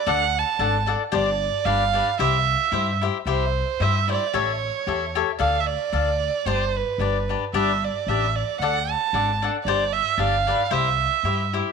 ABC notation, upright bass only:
X:1
M:2/4
L:1/8
Q:"Swing" 1/4=113
K:C
V:1 name="Upright bass" clef=bass
D,,2 _A,,,2 | G,,,2 G,,,2 | C,,2 G,,2 | C,,2 G,,2 |
A,,,2 E,,2 | D,,2 D,,2 | G,,,2 G,,,2 | G,,,2 A,,,2 |
D,,2 _A,,,2 | G,,,2 G,,,2 | C,,2 G,,2 |]